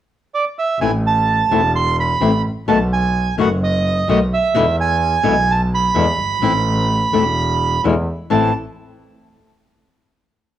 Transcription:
0.34 0.45 D5 medium
0.59 0.79 E5 medium
0.80 1.47 A1 medium
0.80 0.89 E3 medium
0.80 0.90 A3 medium
0.80 0.90 C4 medium
0.80 0.90 E4 medium
0.80 0.91 G#5 medium
1.07 1.71 A5 medium
1.51 2.17 E1 medium
1.51 1.60 E3 medium
1.51 1.60 A3 medium
1.51 1.60 C4 medium
1.51 1.60 E4 medium
1.76 1.97 C6 medium
2.00 2.42 B5 medium
2.21 2.40 A1 medium
2.21 2.30 E3 medium
2.21 2.30 A3 medium
2.21 2.30 C4 medium
2.21 2.30 E4 medium
2.68 3.34 B1 medium
2.68 2.77 B2 medium
2.68 2.77 D#3 medium
2.68 2.77 A3 medium
2.68 2.77 B3 medium
2.68 2.77 F#4 medium
2.68 2.79 A5 medium
2.93 3.36 G#5 medium
3.38 4.05 F#1 medium
3.38 3.47 B2 medium
3.38 3.47 D#3 medium
3.38 3.47 A3 medium
3.38 3.47 B3 medium
3.38 3.47 F#4 medium
3.38 3.50 F#5 medium
3.64 4.08 D#5 medium
4.07 4.27 B1 medium
4.07 4.17 B2 medium
4.07 4.17 D#3 medium
4.07 4.17 A3 medium
4.07 4.18 B3 medium
4.07 4.18 F#4 medium
4.07 4.20 D#5 medium
4.34 4.76 E5 medium
4.54 5.21 E2 medium
4.54 4.64 B2 medium
4.54 4.64 D3 medium
4.54 4.64 G#3 medium
4.54 4.64 B3 medium
4.54 4.64 E4 medium
4.81 5.52 G#5 medium
5.23 5.92 B1 medium
5.23 5.33 B2 medium
5.23 5.33 D3 medium
5.23 5.34 G#3 medium
5.23 5.34 B3 medium
5.23 5.34 E4 medium
5.51 5.61 A5 medium
5.75 7.82 B5 medium
5.94 6.15 E2 medium
5.94 6.04 B2 medium
5.94 6.04 D3 medium
5.94 6.05 G#3 medium
5.94 6.05 B3 medium
5.94 6.05 E4 medium
6.19 6.41 G1 medium
6.41 7.09 A1 medium
6.41 6.51 E3 medium
6.41 6.52 A3 medium
6.41 6.52 C4 medium
6.41 6.52 E4 medium
7.13 7.81 E1 medium
7.13 7.22 E3 medium
7.13 7.22 A3 medium
7.13 7.23 C4 medium
7.13 7.23 E4 medium
7.84 8.04 E2 medium
7.84 7.93 B2 medium
7.84 7.93 D3 medium
7.84 7.94 G#3 medium
7.84 7.94 B3 medium
7.84 7.94 E4 medium
8.30 8.51 A1 soft
8.30 8.50 A2 medium
8.30 8.50 E3 medium
8.30 8.50 A3 medium
8.30 8.50 C4 medium
8.30 8.51 E4 medium
8.30 8.53 A5 medium

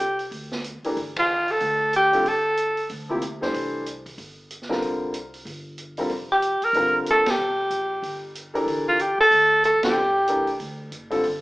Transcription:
0.00 0.29 C2 medium
0.00 0.34 G4 medium
0.19 open hi-hat soft
0.31 0.80 D2 medium
0.31 open hi-hat soft
0.52 snare medium
0.64 closed hi-hat soft
0.83 0.96 E3 medium
0.83 0.96 A3 medium
0.83 0.96 D4 medium
0.83 0.96 G4 medium
0.83 0.97 A#4 medium
0.83 muted upright bass stroke soft
0.83 open hi-hat soft
0.96 1.58 G1 medium
0.96 open hi-hat soft
1.16 1.53 F4 medium
1.16 kick medium
1.16 ride medium
1.48 1.95 A4 medium
1.48 open hi-hat soft
1.60 2.22 D2 medium
1.60 open hi-hat soft
1.93 2.29 G4 loud
1.93 closed hi-hat soft
2.13 2.24 D3 medium
2.13 2.24 G3 medium
2.13 2.24 C4 medium
2.13 2.25 F4 medium
2.13 2.25 A4 medium
2.13 open hi-hat soft
2.24 2.86 G1 medium
2.24 2.91 A4 medium
2.24 open hi-hat soft
2.57 closed hi-hat soft
2.77 open hi-hat soft
2.89 3.38 D2 medium
2.89 open hi-hat soft
3.09 3.21 C3 medium
3.09 3.21 F3 medium
3.09 3.21 A#3 medium
3.09 3.21 E4 medium
3.09 3.21 G4 medium
3.22 closed hi-hat soft
3.41 3.53 G2 medium
3.41 3.83 E3 medium
3.41 3.83 A3 medium
3.41 3.84 D4 medium
3.41 3.84 G4 medium
3.41 3.84 C5 medium
3.41 snare soft
3.54 4.15 C2 medium
3.54 open hi-hat soft
3.86 closed hi-hat soft
4.06 kick soft
4.06 open hi-hat soft
4.18 4.79 G1 medium
4.18 open hi-hat soft
4.50 closed hi-hat soft
4.62 snare soft
4.69 5.12 D3 medium
4.69 5.12 G3 medium
4.69 5.12 C4 medium
4.69 5.12 F4 medium
4.69 5.12 A#4 medium
4.69 snare soft
4.81 5.43 C2 medium
4.81 open hi-hat soft
5.14 closed hi-hat soft
5.34 open hi-hat soft
5.45 6.07 G1 medium
5.45 open hi-hat soft
5.78 closed hi-hat soft
5.97 6.09 D3 medium
5.97 6.09 G3 medium
5.97 6.10 C4 medium
5.97 6.10 F4 medium
5.97 6.10 A#4 medium
5.97 open hi-hat soft
6.09 6.58 F1 medium
6.09 open hi-hat soft
6.32 6.66 G4 medium
6.42 closed hi-hat soft
6.62 6.95 A#4 medium
6.62 muted upright bass stroke soft
6.62 open hi-hat soft
6.73 7.04 G1 medium
6.73 7.23 D3 medium
6.73 7.23 G3 medium
6.73 7.23 C4 medium
6.73 7.23 F4 medium
6.73 7.24 A#4 medium
6.73 open hi-hat soft
7.06 7.36 A#1 medium
7.06 closed hi-hat soft
7.11 7.32 A4 loud
7.26 snare medium
7.26 ride medium
7.30 8.37 G4 medium
7.38 7.68 F1 medium
7.70 8.00 A#1 medium
7.70 closed hi-hat soft
8.02 8.64 G1 medium
8.02 open hi-hat soft
8.35 closed hi-hat soft
8.54 8.97 E3 medium
8.54 8.97 D4 medium
8.54 8.97 G4 medium
8.54 8.97 A4 medium
8.54 8.97 A#4 medium
8.54 open hi-hat soft
8.66 9.15 G1 medium
8.66 open hi-hat soft
8.89 9.02 F4 medium
8.99 9.20 G4 medium
8.99 closed hi-hat soft
9.18 9.30 F1 medium
9.18 9.61 A4 loud
9.31 9.71 D2 medium
9.31 open hi-hat soft
9.64 9.83 A4 medium
9.64 closed hi-hat soft
9.74 9.84 C2 medium
9.83 9.95 A1 medium
9.83 9.95 D3 medium
9.83 9.94 G3 medium
9.83 9.95 C4 medium
9.83 9.95 F4 medium
9.83 10.57 G4 medium
9.83 9.95 A4 medium
9.83 snare medium
9.83 ride medium
9.95 10.57 C2 medium
10.27 10.46 E3 medium
10.27 10.46 A3 soft
10.27 10.46 D4 soft
10.27 10.46 G4 soft
10.27 10.46 A#4 medium
10.27 closed hi-hat soft
10.47 open hi-hat soft
10.60 10.90 D2 medium
10.60 open hi-hat soft
10.91 11.22 F#1 medium
10.91 closed hi-hat soft
11.10 11.23 D3 medium
11.10 11.23 G3 medium
11.10 11.23 C4 medium
11.10 11.23 F4 medium
11.10 11.23 A4 medium
11.10 open hi-hat soft
11.24 11.41 G1 medium
11.24 open hi-hat soft

